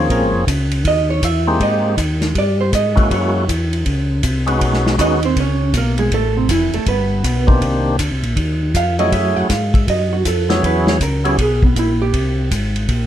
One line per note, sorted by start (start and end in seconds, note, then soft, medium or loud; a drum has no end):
0.00 0.45 F3 medium
0.00 0.45 A#3 medium
0.00 0.45 C4 medium
0.00 0.45 C#4 medium
0.00 0.45 G#4 medium
0.09 0.22 A#1 medium
0.09 0.46 A#4 medium
0.09 kick soft
0.09 ride medium
0.21 0.34 G#1 medium
0.32 0.45 F1 medium
0.47 0.83 C#2 medium
0.47 kick soft
0.47 hi-hat pedal medium
0.47 ride medium
0.71 ride medium
0.84 1.21 D#2 medium
0.84 1.10 D#5 medium
0.84 kick soft
0.84 ride medium
1.10 1.24 C#5 loud
1.22 1.59 E2 loud
1.22 1.61 E5 loud
1.22 kick soft
1.22 hi-hat pedal medium
1.22 ride medium
1.47 1.96 G#3 medium
1.47 1.96 A#3 medium
1.47 1.95 C4 medium
1.47 1.96 D#4 medium
1.47 1.96 G4 medium
1.60 1.96 G#2 medium
1.60 1.97 D#5 medium
1.60 kick soft
1.60 ride medium
1.97 2.34 D#2 medium
1.97 kick soft
1.97 hi-hat pedal soft
1.97 ride medium
2.21 snare soft
2.21 ride soft
2.35 2.72 G2 medium
2.35 2.60 D5 medium
2.35 kick soft
2.35 ride medium
2.61 2.73 C5 medium
2.72 3.09 G#2 medium
2.72 3.09 D#5 medium
2.72 kick soft
2.72 hi-hat pedal medium
2.72 ride medium
2.95 3.45 G#3 medium
2.95 3.45 A#3 medium
2.95 3.45 C#4 medium
2.95 3.45 E4 medium
2.95 3.45 F#4 medium
2.95 kick medium
2.95 ride soft
3.10 3.47 F#2 medium
3.10 3.48 C#5 medium
3.10 kick soft
3.10 ride medium
3.48 3.85 E2 medium
3.48 kick soft
3.48 hi-hat pedal medium
3.48 ride medium
3.73 ride soft
3.86 4.22 C#2 medium
3.86 kick soft
3.86 ride medium
4.23 4.60 C2 medium
4.23 kick soft
4.23 hi-hat pedal medium
4.23 ride medium
4.46 4.96 G#3 medium
4.46 4.96 B3 medium
4.46 4.96 C#4 medium
4.46 4.96 D#4 medium
4.46 4.96 F#4 medium
4.46 ride soft
4.61 4.97 B1 medium
4.61 kick soft
4.61 ride medium
4.73 snare soft
4.87 snare soft
4.98 5.35 D#2 medium
4.98 5.20 G#3 medium
4.98 5.20 B3 medium
4.98 5.21 C#4 medium
4.98 5.21 D#4 medium
4.98 5.24 D#4 medium
4.98 5.21 F#4 medium
4.98 5.24 D#5 medium
4.98 kick soft
4.98 hi-hat pedal medium
4.98 ride medium
5.23 5.37 C4 medium
5.23 5.37 C5 medium
5.23 ride medium
5.36 5.73 C#2 medium
5.36 5.74 C#5 medium
5.36 kick soft
5.36 ride medium
5.41 5.74 C#4 medium
5.73 6.10 B1 medium
5.73 kick soft
5.73 hi-hat pedal medium
5.73 ride medium
5.77 5.99 A#3 medium
5.77 5.99 A#4 medium
5.98 6.12 G#3 medium
5.98 6.12 G#4 medium
5.98 ride soft
6.10 6.48 A1 medium
6.10 6.36 A3 medium
6.10 6.36 A4 loud
6.10 kick soft
6.10 ride medium
6.37 6.50 C3 soft
6.37 6.50 C4 soft
6.49 6.70 F1 medium
6.49 6.74 E3 medium
6.49 6.74 E4 medium
6.49 kick soft
6.49 hi-hat pedal medium
6.49 ride medium
6.71 6.79 F1 soft
6.71 6.87 A3 medium
6.71 6.87 A4 medium
6.71 ride soft
6.86 7.23 G1 medium
6.86 7.60 B3 medium
6.86 7.59 B4 medium
6.86 kick soft
6.86 ride medium
7.23 7.60 B1 medium
7.23 kick soft
7.23 hi-hat pedal medium
7.23 ride medium
7.47 7.97 D#3 medium
7.47 7.97 A#3 medium
7.47 7.97 C4 medium
7.47 7.96 D4 medium
7.47 7.97 G4 medium
7.47 kick medium
7.61 7.98 C2 medium
7.61 kick soft
7.61 ride medium
7.99 8.11 D2 medium
7.99 kick soft
7.99 hi-hat pedal medium
7.99 ride medium
8.10 8.24 C2 medium
8.23 8.35 A#1 medium
8.23 ride soft
8.36 8.73 D#2 medium
8.36 kick soft
8.36 ride medium
8.74 9.11 F2 medium
8.74 8.99 F5 medium
8.74 kick soft
8.74 hi-hat pedal medium
8.74 ride medium
8.99 9.47 F#3 medium
8.99 9.47 A3 medium
8.99 9.48 C#4 medium
8.99 9.48 E4 medium
8.99 9.48 G#4 medium
8.99 9.12 D#5 medium
8.99 ride soft
9.12 9.35 F#2 medium
9.12 9.36 E5 medium
9.12 kick soft
9.12 ride medium
9.36 9.43 F#2 soft
9.36 9.51 F#5 loud
9.49 9.87 G#2 medium
9.49 9.74 F5 medium
9.49 kick soft
9.49 snare soft
9.49 hi-hat pedal medium
9.49 ride medium
9.74 9.88 E5 medium
9.74 kick medium
9.74 ride medium
9.87 10.24 F#2 medium
9.87 10.12 D#5 medium
9.87 kick soft
9.87 ride medium
10.13 10.26 F#4 medium
10.25 10.62 F2 medium
10.25 10.50 A4 medium
10.25 kick soft
10.25 hi-hat pedal medium
10.25 ride medium
10.49 10.98 F#3 medium
10.49 10.98 B3 medium
10.49 10.98 C#4 medium
10.49 10.98 E4 medium
10.49 10.98 G#4 medium
10.49 10.64 C#5 loud
10.49 snare medium
10.49 ride medium
10.63 11.00 E2 medium
10.63 10.88 B4 medium
10.63 kick soft
10.63 ride medium
10.87 11.01 C#5 loud
10.87 snare medium
11.00 11.37 C#2 medium
11.00 11.25 A#4 medium
11.00 kick soft
11.00 hi-hat pedal medium
11.00 ride medium
11.24 11.37 F#3 medium
11.24 11.37 B3 medium
11.24 11.37 C#4 medium
11.24 11.37 E4 medium
11.24 11.41 G4 medium
11.24 11.37 G#4 medium
11.24 ride medium
11.38 11.75 B1 medium
11.38 11.63 G#4 medium
11.38 kick soft
11.38 ride medium
11.63 11.77 B3 soft
11.63 kick medium
11.76 12.12 A#1 medium
11.76 12.01 E4 medium
11.76 kick soft
11.76 hi-hat pedal medium
11.76 ride medium
12.02 12.49 G4 medium
12.13 12.50 C2 medium
12.13 kick soft
12.13 ride medium
12.51 12.88 G#1 medium
12.51 kick soft
12.51 hi-hat pedal medium
12.51 ride medium
12.76 ride medium
12.89 13.07 A#1 medium
12.89 kick soft
12.89 ride medium